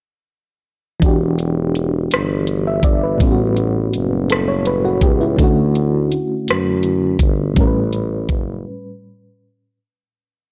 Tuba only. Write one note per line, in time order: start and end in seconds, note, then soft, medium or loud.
1.03 2.08 E1 loud
2.13 2.81 G1 medium
2.84 3.17 G1 medium
3.21 3.89 A1 loud
3.95 4.99 F#1 medium
5.03 5.35 C#2 medium
5.40 6.17 D2 medium
6.50 7.17 F#2 medium
7.20 7.53 G1 medium
7.58 8.26 A1 medium
8.30 8.64 F#1 medium